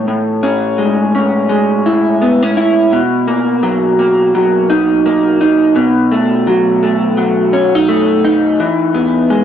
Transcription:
Already playing: E3 G#3
0.08 A2
0.43 C#4
0.78 G#3
1.15 C#4
1.49 G#3
1.86 E4
2.22 B3
2.43 C#4
2.57 E4
2.93 B2
3.28 A#3
3.63 F#3
3.99 A#3
4.35 F#3
4.70 D#4
5.06 A#3
5.41 D#4
5.76 B2
6.12 A3
6.47 F#3
6.83 A3
7.17 F#3
7.53 C#4
7.75 D#4
7.88 A3
8.24 D#4
8.60 E3
8.94 B3
9.30 G#3

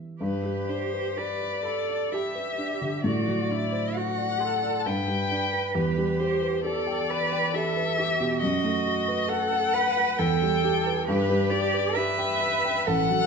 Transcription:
Already playing: E2 G3 E4 B4
0.20 G2 G4 B4
0.44 G3
0.69 D4 C5
0.93 B4
1.17 G4 B4 D5
1.42 D5
1.65 A4 B5
1.89 D5
2.12 G4 E5
2.35 B4
2.58 D4
2.81 D3
3.04 A2 F#4 D5
3.26 F#3
3.49 D4 E4
3.72 C5
3.95 F#4 F#5
4.18 D5
4.40 A4 C6
4.63 D5
4.80 A5
4.86 G2 B4 G5
5.08 G3
5.31 D4
5.53 B4
5.75 E2 G4 B4
5.97 G3
6.20 G4 C5
6.42 B4
6.65 G4 A4 D5
6.87 G5
7.10 B4 B5
7.33 G5
7.54 G4 A4 E5
7.77 B4
7.98 G4
8.20 B2
8.40 F#2 F#4 D#5
8.64 A3
8.86 F#4
9.08 B4
9.28 A4 F#5
9.53 F#5
9.73 B4 B5
9.97 F#5
10.19 E2 A4 G5
10.42 G3
10.64 G4
10.87 B4
11.07 G2 G4 B4
11.29 G3
11.50 G4 D5
11.74 B4
11.95 G4 B4 E5
12.19 G5
12.41 B5
12.65 G5
12.86 A1 A4 F#5
13.10 F#3

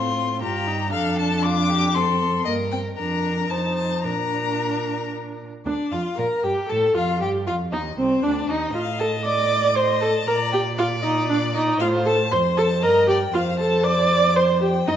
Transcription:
Already playing: A2 C4 F4 C6
0.41 G2 F4 G4 A#5
0.67 D#4
0.92 F2 D4 A4 F5
1.18 A5
1.43 F4 D6
1.70 G4
1.95 C4 A4 C6
2.45 G2 A#3 A#4 D#5
2.71 C4 G5
2.97 F2 D4 A#4 A#5
3.50 F2 D#4 C5 A5
3.76 A5
4.03 A#2 D4 A#4 A#5
5.66 D2 D4 D5
5.92 F2 F4 F5
6.18 A#2 A#4 A#5
6.43 G2 G4 G5
6.69 A2 A4 A5
6.95 F2 F4 F5
7.21 G2 G4 G5
7.47 F2 F4 F5
7.72 D#2 D#4 D#5
7.97 C2 C4 C5
8.23 D2 D4 D5
8.49 D#2 D#4 D#5
8.74 A2 F4 D#5 F5
8.99 A4 A5
9.25 D5 D6
9.76 C5 D#5 C6
10.00 A4 A5
10.27 A#2 A#4 D5 A#5
10.52 G4 G5
10.78 F4 D5 F5
11.02 D#4 D#5
11.28 D4 D5
11.54 D#4 D#5
11.79 A2 F4 C5 F5
12.06 A4 A5
12.31 F2 C5 C6
12.57 A4 A5
12.82 G2 A#4 D#5 A#5
13.07 G4 D5 G5
13.33 F2 F4 C5 F5
13.59 A4 A5
13.84 D5 D6
14.36 C5 C6
14.61 G4 G5
14.88 G2 D#4 D#5

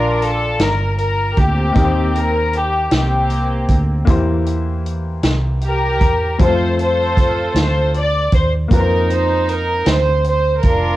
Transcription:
Already playing: A#1 A#2 A#3 D4 F4 A#4 D5 A5
0.22 A4, closed hi-hat
0.59 G1 A#4, snare, closed hi-hat
0.98 A#4, closed hi-hat
1.37 D2 G4, kick, closed hi-hat
1.41 A#3 C4
1.73 D#2 D#3 A#3 D#4 G4, kick, closed hi-hat
1.78 A#4
1.84 C5
2.15 A#4, closed hi-hat
2.53 G4, closed hi-hat
2.91 C2 G4, snare, closed hi-hat
2.96 A#3 C4
3.30 closed hi-hat
3.68 D2, kick, closed hi-hat
4.05 E2 E3 A#3 E4 G4, kick, closed hi-hat
4.10 C5
4.46 closed hi-hat
4.86 closed hi-hat
5.23 C2, snare, closed hi-hat
5.61 G4, closed hi-hat
5.66 A#4
6.01 E2, kick, closed hi-hat
6.38 F2 G3 C4 F4 A4 C5, kick, closed hi-hat
6.43 A3 C5
6.79 F4 A4 C5, closed hi-hat
7.17 kick, closed hi-hat
7.54 D2, snare, closed hi-hat
7.59 C5
7.94 D5, closed hi-hat
8.32 D#2 C5, kick, closed hi-hat
8.68 F2 A#3 C4 F4, kick, closed hi-hat
8.73 D#4 A#4 B4
8.80 C5
9.10 C5, closed hi-hat
9.49 A#4, closed hi-hat
9.86 D2 C5, snare, closed hi-hat
10.24 closed hi-hat
10.29 C5
10.63 F1 D4 F4, kick, closed hi-hat
10.67 A#4

